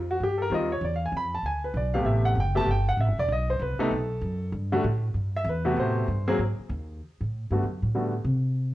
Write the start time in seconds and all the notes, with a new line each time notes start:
Already playing: F2
0.11 F#4
0.20 G2 G4
0.42 A#4
0.50 D#2 D#3 G3 C4 F4
0.54 D#5
0.72 C#5
0.81 E2 D5
0.96 F5
1.06 G#5
1.12 F2
1.17 B5
1.34 A5
1.43 D2 G#5
1.64 B4
1.74 B1 D5
1.94 C3 A3 B3 G4 F5
2.05 A1 E5
2.25 F#5
2.35 F#1
2.40 G5
2.55 C3 A3 B3 G4 A5
2.67 G1
2.71 G5
2.89 F#5
2.97 A1 E5
3.07 G1
3.19 E1 D5
3.29 B1 D#5
3.50 C5
3.60 C2 B4
3.78 C3 A3 B3 D#4 A4, muted upright bass stroke
3.91 B1
4.21 F#2
4.52 G2
4.72 D3 G3 A3 F#4
4.84 A2
5.14 G2
5.37 E5
5.44 E2
5.49 B4
5.65 C3 A3 B3 F#4
5.77 A2 C5
6.08 G2
6.28 F#3 A#3 C4 G#4
6.39 G#2
6.59 muted upright bass stroke
6.69 D#2
7.21 A2
7.50 G2 D3 G3 A3 B3 F#4
7.63 F#2
7.82 A2
7.95 D3 G3 A3 B3 F#4
8.25 C3